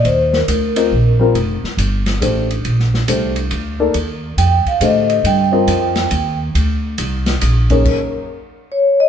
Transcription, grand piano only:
X:1
M:3/4
L:1/8
Q:"Swing" 1/4=138
K:Eblyd
V:1 name="Grand piano"
z3 [CFBe] z [G,CFB] | z4 [A,DGc] z | z2 [A,DGc] z2 [B,EAd] | z4 [D,A,Gc]2- |
[D,A,Gc] [CFBe]3 z2 | z4 z [_G,,B,E_A_d]- | [_G,,B,E_A_d]2 z4 |]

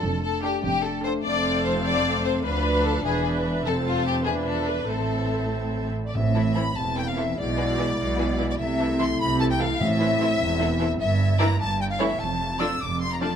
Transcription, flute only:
X:1
M:6/8
L:1/16
Q:3/8=99
K:Dm
V:1 name="Flute"
z12 | [K:Am] z12 | z12 | z12 |
z8 z3 d | e4 b2 a2 g f e2 | d8- d3 d | e4 c'2 b2 a g f2 |
e8- e3 z | [K:Dm] e4 b2 a2 g f e2 | a4 e'2 d'2 c' b a2 |]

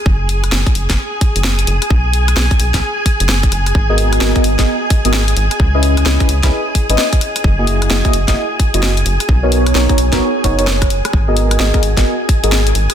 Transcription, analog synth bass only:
X:1
M:4/4
L:1/16
Q:"Swing 16ths" 1/4=130
K:G#m
V:1 name="Analog synth bass" clef=bass
F,,,4 F,,, z F,,, F,,, z3 F,,,3 F,,, z | B,,,4 B,,, z B,,, B,,, z3 F,,, F,,,2 F,,,2 | G,,,4 G,,, z G,,, G,,, z3 G,,,3 G,,, z | C,,4 C,, z C,, C,, z3 G,,, z4 |
F,,,4 F,,, z F,,, F,,, z3 F,,,3 F,,, z | B,,,4 B,,, z B,,, B,,, z2 F,,,4- F,,, z | G,,,4 G,,, z G,,, G,,, z3 G,,,3 G,,, z |]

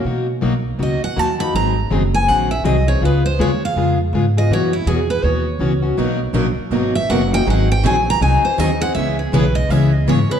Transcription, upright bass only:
X:1
M:4/4
L:1/8
Q:"Swing" 1/4=162
K:B
V:1 name="Upright bass" clef=bass
B,,2 B,,,2 C,, z D,,2 | G,,,2 F,,,2 A,,,2 ^B,,,2 | C,,2 D,,2 ^E,,2 G,,2 | F,,2 E,,2 D,,2 C,,2 |
B,,,2 A,,, z G,,,2 F,,,2 | G,,,2 A,,,2 ^B,,, z D,,2 | C,,2 B,,,2 C,,2 G,, z |]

